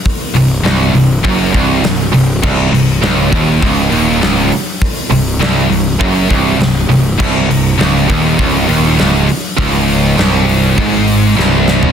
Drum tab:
CC |----------------|x---------------|----------------|x---------------|
HH |o-o-o-o-o---o-o-|--o-o-o-o-o-o-o-|o-o-o-o---o-o-o-|--o-o-o-o-o-o-o-|
SD |----o-------o---|----o-------o---|----o-------o---|----o-------o---|
FT |----------------|----------------|----------------|----------------|
BD |o-------o-o-----|o-----o-o-------|o-------o-o-----|o-----o-o-------|

CC |----------------|
HH |o-o-o-o-o-o-----|
SD |----o-------o-o-|
FT |---------------o|
BD |o-------o-------|